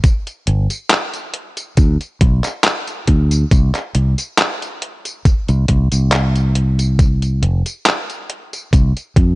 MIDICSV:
0, 0, Header, 1, 4, 480
1, 0, Start_track
1, 0, Tempo, 869565
1, 20, Time_signature, 4, 2, 24, 8
1, 5162, End_track
2, 0, Start_track
2, 0, Title_t, "Fingered electric bass"
2, 0, Program_c, 0, 33
2, 262, Note_on_c, 0, 31, 101
2, 363, Note_off_c, 0, 31, 0
2, 980, Note_on_c, 0, 38, 89
2, 1082, Note_off_c, 0, 38, 0
2, 1220, Note_on_c, 0, 35, 103
2, 1323, Note_off_c, 0, 35, 0
2, 1700, Note_on_c, 0, 38, 92
2, 1895, Note_off_c, 0, 38, 0
2, 1940, Note_on_c, 0, 36, 98
2, 2042, Note_off_c, 0, 36, 0
2, 2181, Note_on_c, 0, 36, 100
2, 2283, Note_off_c, 0, 36, 0
2, 3029, Note_on_c, 0, 36, 100
2, 3117, Note_off_c, 0, 36, 0
2, 3139, Note_on_c, 0, 36, 104
2, 3242, Note_off_c, 0, 36, 0
2, 3268, Note_on_c, 0, 36, 79
2, 4098, Note_on_c, 0, 29, 101
2, 4107, Note_off_c, 0, 36, 0
2, 4202, Note_off_c, 0, 29, 0
2, 4818, Note_on_c, 0, 36, 92
2, 4922, Note_off_c, 0, 36, 0
2, 5058, Note_on_c, 0, 41, 97
2, 5162, Note_off_c, 0, 41, 0
2, 5162, End_track
3, 0, Start_track
3, 0, Title_t, "Muted fingered electric bass strokes"
3, 2899, Note_on_c, 9, 29, 44
3, 2954, Note_off_c, 9, 29, 0
3, 5162, End_track
4, 0, Start_track
4, 0, Title_t, "Drums"
4, 20, Note_on_c, 9, 42, 67
4, 20, Note_on_c, 9, 54, 43
4, 21, Note_on_c, 9, 36, 127
4, 75, Note_off_c, 9, 42, 0
4, 75, Note_off_c, 9, 54, 0
4, 76, Note_off_c, 9, 36, 0
4, 148, Note_on_c, 9, 42, 39
4, 148, Note_on_c, 9, 54, 27
4, 203, Note_off_c, 9, 42, 0
4, 203, Note_off_c, 9, 54, 0
4, 259, Note_on_c, 9, 42, 92
4, 314, Note_off_c, 9, 42, 0
4, 387, Note_on_c, 9, 42, 38
4, 387, Note_on_c, 9, 54, 52
4, 442, Note_off_c, 9, 42, 0
4, 442, Note_off_c, 9, 54, 0
4, 498, Note_on_c, 9, 39, 121
4, 498, Note_on_c, 9, 42, 66
4, 498, Note_on_c, 9, 54, 45
4, 553, Note_off_c, 9, 39, 0
4, 553, Note_off_c, 9, 42, 0
4, 553, Note_off_c, 9, 54, 0
4, 626, Note_on_c, 9, 42, 40
4, 626, Note_on_c, 9, 54, 27
4, 681, Note_off_c, 9, 42, 0
4, 681, Note_off_c, 9, 54, 0
4, 737, Note_on_c, 9, 42, 90
4, 792, Note_off_c, 9, 42, 0
4, 866, Note_on_c, 9, 42, 39
4, 866, Note_on_c, 9, 54, 54
4, 922, Note_off_c, 9, 42, 0
4, 922, Note_off_c, 9, 54, 0
4, 978, Note_on_c, 9, 42, 66
4, 978, Note_on_c, 9, 54, 44
4, 980, Note_on_c, 9, 36, 125
4, 1033, Note_off_c, 9, 42, 0
4, 1033, Note_off_c, 9, 54, 0
4, 1035, Note_off_c, 9, 36, 0
4, 1109, Note_on_c, 9, 42, 39
4, 1109, Note_on_c, 9, 54, 26
4, 1164, Note_off_c, 9, 42, 0
4, 1164, Note_off_c, 9, 54, 0
4, 1220, Note_on_c, 9, 36, 113
4, 1220, Note_on_c, 9, 42, 90
4, 1275, Note_off_c, 9, 36, 0
4, 1275, Note_off_c, 9, 42, 0
4, 1348, Note_on_c, 9, 39, 38
4, 1348, Note_on_c, 9, 42, 39
4, 1348, Note_on_c, 9, 54, 53
4, 1403, Note_off_c, 9, 39, 0
4, 1403, Note_off_c, 9, 42, 0
4, 1403, Note_off_c, 9, 54, 0
4, 1458, Note_on_c, 9, 39, 126
4, 1458, Note_on_c, 9, 42, 65
4, 1458, Note_on_c, 9, 54, 44
4, 1513, Note_off_c, 9, 39, 0
4, 1513, Note_off_c, 9, 42, 0
4, 1513, Note_off_c, 9, 54, 0
4, 1588, Note_on_c, 9, 42, 40
4, 1588, Note_on_c, 9, 54, 26
4, 1643, Note_off_c, 9, 42, 0
4, 1643, Note_off_c, 9, 54, 0
4, 1698, Note_on_c, 9, 42, 91
4, 1700, Note_on_c, 9, 36, 62
4, 1754, Note_off_c, 9, 42, 0
4, 1755, Note_off_c, 9, 36, 0
4, 1829, Note_on_c, 9, 42, 38
4, 1829, Note_on_c, 9, 54, 51
4, 1884, Note_off_c, 9, 42, 0
4, 1884, Note_off_c, 9, 54, 0
4, 1940, Note_on_c, 9, 36, 116
4, 1940, Note_on_c, 9, 42, 64
4, 1940, Note_on_c, 9, 54, 44
4, 1995, Note_off_c, 9, 36, 0
4, 1995, Note_off_c, 9, 42, 0
4, 1995, Note_off_c, 9, 54, 0
4, 2069, Note_on_c, 9, 39, 38
4, 2069, Note_on_c, 9, 42, 38
4, 2069, Note_on_c, 9, 54, 26
4, 2124, Note_off_c, 9, 39, 0
4, 2124, Note_off_c, 9, 42, 0
4, 2124, Note_off_c, 9, 54, 0
4, 2179, Note_on_c, 9, 42, 89
4, 2234, Note_off_c, 9, 42, 0
4, 2308, Note_on_c, 9, 42, 37
4, 2308, Note_on_c, 9, 54, 52
4, 2363, Note_off_c, 9, 42, 0
4, 2363, Note_off_c, 9, 54, 0
4, 2419, Note_on_c, 9, 39, 121
4, 2419, Note_on_c, 9, 42, 63
4, 2419, Note_on_c, 9, 54, 43
4, 2475, Note_off_c, 9, 39, 0
4, 2475, Note_off_c, 9, 42, 0
4, 2475, Note_off_c, 9, 54, 0
4, 2551, Note_on_c, 9, 42, 39
4, 2551, Note_on_c, 9, 54, 27
4, 2606, Note_off_c, 9, 42, 0
4, 2606, Note_off_c, 9, 54, 0
4, 2659, Note_on_c, 9, 42, 87
4, 2715, Note_off_c, 9, 42, 0
4, 2788, Note_on_c, 9, 42, 38
4, 2788, Note_on_c, 9, 54, 55
4, 2843, Note_off_c, 9, 42, 0
4, 2843, Note_off_c, 9, 54, 0
4, 2899, Note_on_c, 9, 36, 124
4, 2899, Note_on_c, 9, 42, 65
4, 2899, Note_on_c, 9, 54, 44
4, 2954, Note_off_c, 9, 36, 0
4, 2954, Note_off_c, 9, 42, 0
4, 2954, Note_off_c, 9, 54, 0
4, 3027, Note_on_c, 9, 42, 38
4, 3027, Note_on_c, 9, 54, 26
4, 3082, Note_off_c, 9, 42, 0
4, 3082, Note_off_c, 9, 54, 0
4, 3136, Note_on_c, 9, 42, 88
4, 3139, Note_on_c, 9, 36, 61
4, 3192, Note_off_c, 9, 42, 0
4, 3194, Note_off_c, 9, 36, 0
4, 3265, Note_on_c, 9, 42, 39
4, 3265, Note_on_c, 9, 54, 55
4, 3321, Note_off_c, 9, 42, 0
4, 3321, Note_off_c, 9, 54, 0
4, 3378, Note_on_c, 9, 39, 123
4, 3378, Note_on_c, 9, 42, 62
4, 3378, Note_on_c, 9, 54, 45
4, 3433, Note_off_c, 9, 39, 0
4, 3433, Note_off_c, 9, 42, 0
4, 3433, Note_off_c, 9, 54, 0
4, 3509, Note_on_c, 9, 42, 38
4, 3509, Note_on_c, 9, 54, 27
4, 3564, Note_off_c, 9, 42, 0
4, 3564, Note_off_c, 9, 54, 0
4, 3618, Note_on_c, 9, 42, 89
4, 3673, Note_off_c, 9, 42, 0
4, 3748, Note_on_c, 9, 42, 38
4, 3748, Note_on_c, 9, 54, 52
4, 3803, Note_off_c, 9, 42, 0
4, 3803, Note_off_c, 9, 54, 0
4, 3859, Note_on_c, 9, 36, 115
4, 3859, Note_on_c, 9, 42, 62
4, 3859, Note_on_c, 9, 54, 47
4, 3914, Note_off_c, 9, 36, 0
4, 3914, Note_off_c, 9, 42, 0
4, 3914, Note_off_c, 9, 54, 0
4, 3987, Note_on_c, 9, 42, 37
4, 3987, Note_on_c, 9, 54, 28
4, 4042, Note_off_c, 9, 42, 0
4, 4042, Note_off_c, 9, 54, 0
4, 4100, Note_on_c, 9, 42, 87
4, 4155, Note_off_c, 9, 42, 0
4, 4228, Note_on_c, 9, 42, 36
4, 4228, Note_on_c, 9, 54, 54
4, 4284, Note_off_c, 9, 42, 0
4, 4284, Note_off_c, 9, 54, 0
4, 4339, Note_on_c, 9, 39, 116
4, 4339, Note_on_c, 9, 42, 62
4, 4339, Note_on_c, 9, 54, 45
4, 4394, Note_off_c, 9, 39, 0
4, 4394, Note_off_c, 9, 42, 0
4, 4394, Note_off_c, 9, 54, 0
4, 4469, Note_on_c, 9, 42, 39
4, 4469, Note_on_c, 9, 54, 28
4, 4524, Note_off_c, 9, 42, 0
4, 4524, Note_off_c, 9, 54, 0
4, 4579, Note_on_c, 9, 42, 86
4, 4634, Note_off_c, 9, 42, 0
4, 4710, Note_on_c, 9, 42, 39
4, 4710, Note_on_c, 9, 54, 57
4, 4765, Note_off_c, 9, 42, 0
4, 4765, Note_off_c, 9, 54, 0
4, 4818, Note_on_c, 9, 36, 114
4, 4821, Note_on_c, 9, 42, 64
4, 4821, Note_on_c, 9, 54, 47
4, 4874, Note_off_c, 9, 36, 0
4, 4876, Note_off_c, 9, 42, 0
4, 4876, Note_off_c, 9, 54, 0
4, 4950, Note_on_c, 9, 42, 37
4, 4950, Note_on_c, 9, 54, 28
4, 5005, Note_off_c, 9, 42, 0
4, 5005, Note_off_c, 9, 54, 0
4, 5058, Note_on_c, 9, 36, 103
4, 5060, Note_on_c, 9, 42, 90
4, 5113, Note_off_c, 9, 36, 0
4, 5115, Note_off_c, 9, 42, 0
4, 5162, End_track
0, 0, End_of_file